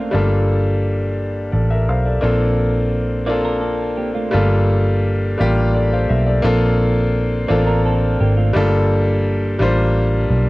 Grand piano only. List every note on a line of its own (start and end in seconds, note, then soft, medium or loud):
0.00 0.12 A#3 medium
0.00 0.14 C4 medium
0.00 0.14 C#4 medium
0.00 0.13 D4 medium
0.00 0.14 F4 medium
0.00 0.14 A4 medium
0.00 0.14 C5 medium
0.11 1.03 G3 medium
0.11 1.04 A#3 medium
0.11 1.04 D4 medium
0.11 1.05 F4 medium
0.11 1.05 A4 medium
1.52 1.69 A4 medium
1.52 1.69 D5 medium
1.70 1.87 A#4 medium
1.70 1.87 E5 medium
1.89 2.05 C5 soft
1.89 2.05 F5 medium
2.05 2.22 A4 medium
2.05 2.38 D5 medium
2.21 3.14 A#3 medium
2.21 3.14 C4 medium
2.21 3.14 D4 medium
2.21 3.15 F4 medium
2.21 3.15 A4 medium
3.26 4.19 A#3 medium
3.26 4.19 C4 medium
3.26 4.20 D4 medium
3.26 4.20 F4 medium
3.26 4.21 A4 medium
4.31 5.24 G3 medium
4.31 5.24 A#3 medium
4.31 5.25 D4 medium
4.31 5.25 F4 medium
4.31 5.25 A4 loud
5.38 6.30 G3 medium
5.38 6.30 A#3 medium
5.38 6.31 D4 medium
5.38 6.31 F4 medium
5.38 6.31 G4 loud
5.74 5.91 A4 medium
5.74 5.90 D5 medium
5.93 6.09 C5 medium
5.93 6.08 F5 medium
6.09 6.26 A#4 medium
6.09 6.25 E5 medium
6.26 6.43 A4 medium
6.26 6.59 D5 medium
6.42 7.35 A#3 loud
6.42 7.35 C4 medium
6.42 7.36 D4 medium
6.42 7.36 F4 medium
6.42 7.36 A4 loud
7.48 8.40 A#3 medium
7.48 8.40 C4 medium
7.48 8.41 D4 medium
7.48 8.41 F4 medium
7.48 8.42 A4 loud
8.53 9.45 G3 loud
8.53 9.46 A#3 medium
8.53 9.46 D4 medium
8.53 9.47 F4 medium
8.53 9.47 A4 loud
9.59 10.49 G3 loud
9.59 10.49 A#3 medium
9.59 10.49 D4 medium
9.59 10.49 F4 medium
9.59 10.49 C5 loud